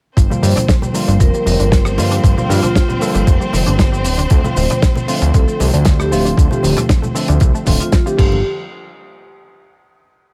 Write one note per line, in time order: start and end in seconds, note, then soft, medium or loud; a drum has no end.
0.17 0.28 G1 loud
0.17 0.21 F3 medium
0.17 8.19 C4 medium
0.17 8.19 C5 medium
0.17 kick loud
0.17 closed hi-hat medium
0.17 shaker medium
0.29 0.91 D3 medium
0.29 0.91 F3 medium
0.29 0.91 G3 medium
0.29 0.34 G3 medium
0.29 0.92 A#3 medium
0.29 0.92 F4 medium
0.29 low conga medium
0.29 shaker soft
0.43 0.54 G2 loud
0.43 0.50 A#3 medium
0.43 0.66 C5 medium
0.43 open hi-hat loud
0.43 high conga medium
0.43 shaker medium
0.56 0.63 D4 medium
0.56 cross-stick medium
0.56 closed hi-hat medium
0.56 low conga loud
0.56 shaker medium
0.68 0.76 F3 medium
0.68 kick loud
0.68 snare loud
0.68 closed hi-hat medium
0.68 shaker medium
0.82 0.89 G3 medium
0.82 low conga medium
0.82 shaker soft
0.93 1.94 D3 medium
0.93 1.95 F3 medium
0.93 1.95 G3 medium
0.93 0.99 A#3 medium
0.93 1.95 A#3 medium
0.93 1.95 F4 loud
0.93 open hi-hat loud
0.93 shaker medium
1.08 1.18 G1 medium
1.08 1.18 D4 medium
1.08 closed hi-hat medium
1.08 shaker soft
1.20 1.31 F1 medium
1.20 1.25 F3 medium
1.20 1.29 A#4 medium
1.20 kick loud
1.20 closed hi-hat medium
1.20 shaker medium
1.34 1.38 G3 medium
1.34 1.42 A#4 medium
1.34 shaker soft
1.46 1.57 F1 loud
1.46 1.53 A#3 medium
1.46 1.70 A#4 medium
1.46 open hi-hat loud
1.46 high conga medium
1.46 shaker medium
1.59 1.99 G1 medium
1.59 1.66 D4 medium
1.59 closed hi-hat medium
1.59 high conga medium
1.59 shaker soft
1.72 1.79 F3 medium
1.72 kick loud
1.72 snare loud
1.72 closed hi-hat medium
1.72 shaker medium
1.85 1.92 G3 medium
1.85 cross-stick medium
1.85 shaker soft
1.97 2.19 G2 medium
1.97 2.34 D3 medium
1.97 2.34 F3 medium
1.97 2.34 G3 medium
1.97 2.02 A#3 medium
1.97 2.34 A#3 medium
1.97 2.34 F4 loud
1.97 open hi-hat loud
1.97 shaker medium
2.11 2.21 D4 medium
2.11 closed hi-hat medium
2.11 shaker soft
2.24 2.35 G1 loud
2.24 2.28 F3 medium
2.24 kick loud
2.24 closed hi-hat medium
2.24 shaker medium
2.36 2.98 D3 medium
2.36 2.98 F3 medium
2.36 2.98 G3 medium
2.36 2.41 G3 medium
2.36 2.99 A#3 medium
2.36 2.99 F4 medium
2.36 low conga medium
2.36 shaker soft
2.49 2.61 G2 loud
2.49 2.57 A#3 medium
2.49 3.23 F4 medium
2.49 open hi-hat loud
2.49 high conga medium
2.49 shaker medium
2.63 2.70 D4 medium
2.63 cross-stick medium
2.63 closed hi-hat medium
2.63 low conga medium
2.63 shaker medium
2.75 2.83 F3 medium
2.75 kick loud
2.75 snare loud
2.75 closed hi-hat medium
2.75 shaker medium
2.89 2.95 G3 medium
2.89 low conga medium
2.89 shaker soft
3.00 4.03 D3 medium
3.00 4.03 F3 medium
3.00 4.03 G3 medium
3.00 3.05 A#3 medium
3.00 4.03 A#3 medium
3.00 4.04 A4 loud
3.00 open hi-hat loud
3.00 shaker medium
3.15 3.25 G1 medium
3.15 3.25 D4 medium
3.15 closed hi-hat medium
3.15 shaker soft
3.27 3.38 F1 loud
3.27 3.31 F3 medium
3.27 kick loud
3.27 closed hi-hat medium
3.27 shaker medium
3.40 3.45 G3 medium
3.40 shaker soft
3.53 3.64 F1 loud
3.53 3.60 A#3 medium
3.53 snare soft
3.53 open hi-hat loud
3.53 high conga medium
3.53 shaker medium
3.66 4.06 G1 medium
3.66 3.73 D4 medium
3.66 closed hi-hat medium
3.66 high conga medium
3.66 shaker medium
3.78 3.86 F3 medium
3.78 kick loud
3.78 snare loud
3.78 closed hi-hat medium
3.78 shaker medium
3.92 3.99 G3 medium
3.92 shaker soft
4.04 4.26 D1 medium
4.04 4.09 C4 medium
4.04 open hi-hat loud
4.04 shaker medium
4.18 4.28 D4 medium
4.18 closed hi-hat medium
4.18 high conga medium
4.18 shaker medium
4.30 4.42 D2 loud
4.30 4.35 F3 medium
4.30 kick loud
4.30 closed hi-hat medium
4.30 shaker medium
4.43 5.05 D3 medium
4.43 5.05 F3 medium
4.43 5.05 A3 medium
4.43 4.48 A3 medium
4.43 5.05 C4 medium
4.43 5.06 F4 medium
4.43 low conga medium
4.43 shaker soft
4.56 4.68 D1 loud
4.56 4.64 C4 medium
4.56 4.80 C5 medium
4.56 open hi-hat loud
4.56 high conga medium
4.56 shaker medium
4.70 4.77 D4 medium
4.70 cross-stick medium
4.70 closed hi-hat medium
4.70 low conga medium
4.70 shaker soft
4.82 4.90 F3 medium
4.82 kick loud
4.82 snare loud
4.82 closed hi-hat medium
4.82 shaker medium
4.96 5.02 A3 medium
4.96 low conga medium
4.96 shaker soft
5.07 6.08 D3 medium
5.07 6.08 F3 medium
5.07 6.09 A3 medium
5.07 5.13 C4 medium
5.07 6.09 C4 medium
5.07 6.09 F4 loud
5.07 open hi-hat loud
5.07 shaker medium
5.22 5.32 D2 medium
5.22 5.32 D4 medium
5.22 closed hi-hat medium
5.22 shaker soft
5.34 5.45 C2 loud
5.34 5.38 F3 medium
5.34 5.43 A4 medium
5.34 kick loud
5.34 closed hi-hat medium
5.34 shaker medium
5.48 5.52 A3 medium
5.48 5.56 A4 medium
5.48 shaker soft
5.60 5.71 C2 loud
5.60 5.67 C4 medium
5.60 open hi-hat loud
5.60 high conga medium
5.60 shaker medium
5.73 6.13 D2 medium
5.73 5.80 D4 medium
5.73 closed hi-hat medium
5.73 high conga medium
5.73 shaker medium
5.85 5.93 F3 medium
5.85 kick loud
5.85 snare loud
5.85 closed hi-hat medium
5.85 shaker medium
5.99 6.06 A3 medium
5.99 6.22 G4 loud
5.99 cross-stick medium
5.99 shaker soft
6.11 6.33 D1 medium
6.11 6.48 D3 loud
6.11 6.48 F3 medium
6.11 6.48 A3 medium
6.11 6.16 C4 medium
6.11 6.48 C4 medium
6.11 6.48 F4 loud
6.11 open hi-hat loud
6.11 shaker loud
6.25 6.35 D4 medium
6.25 closed hi-hat medium
6.25 shaker soft
6.37 6.49 D2 loud
6.37 6.42 F3 medium
6.37 kick loud
6.37 closed hi-hat medium
6.37 shaker medium
6.51 7.12 D3 medium
6.51 7.12 F3 medium
6.51 6.55 A3 medium
6.51 7.12 A3 medium
6.51 7.13 C4 medium
6.51 7.13 F4 medium
6.51 6.74 G4 medium
6.51 low conga medium
6.51 shaker soft
6.63 6.75 D1 loud
6.63 6.70 C4 medium
6.63 open hi-hat loud
6.63 high conga medium
6.63 shaker medium
6.77 6.83 D4 medium
6.77 cross-stick medium
6.77 closed hi-hat medium
6.77 low conga loud
6.77 shaker medium
6.89 6.96 F3 medium
6.89 kick loud
6.89 snare loud
6.89 closed hi-hat medium
6.89 shaker medium
7.02 7.09 A3 medium
7.02 low conga medium
7.02 shaker soft
7.15 7.64 D3 medium
7.15 7.64 F3 medium
7.15 7.64 A3 medium
7.15 7.19 C4 medium
7.15 7.64 C4 medium
7.15 7.65 A4 loud
7.15 open hi-hat loud
7.15 shaker medium
7.28 7.39 D2 medium
7.28 7.38 D4 medium
7.28 closed hi-hat medium
7.28 shaker medium
7.40 7.52 C2 loud
7.40 7.45 F3 medium
7.40 kick loud
7.40 closed hi-hat medium
7.40 shaker medium
7.55 7.59 A3 medium
7.55 shaker soft
7.65 7.78 D1 loud
7.65 8.03 D3 medium
7.65 7.78 F3 medium
7.65 8.03 F3 medium
7.65 8.03 A3 medium
7.65 8.03 C4 medium
7.65 8.03 F4 loud
7.65 kick medium
7.65 snare soft
7.65 open hi-hat loud
7.65 high conga medium
7.65 shaker medium
7.80 7.84 F3 medium
7.80 8.04 F4 medium
7.80 closed hi-hat medium
7.80 high conga medium
7.80 shaker soft
7.92 7.97 C4 loud
7.92 kick loud
7.92 snare loud
7.92 closed hi-hat medium
7.92 shaker medium
8.06 8.16 D3 medium
8.06 8.17 F3 medium
8.06 8.17 A3 medium
8.06 8.17 C4 medium
8.06 8.13 F4 medium
8.06 8.45 G4 loud
8.06 8.17 G4 medium
8.06 shaker soft
8.17 8.43 G1 loud
8.17 8.37 D3 medium
8.17 8.38 F3 medium
8.17 8.42 F3 medium
8.17 8.38 G3 medium
8.17 8.39 A#3 medium
8.17 8.39 F4 loud
8.17 kick loud
8.17 crash medium
8.32 high conga medium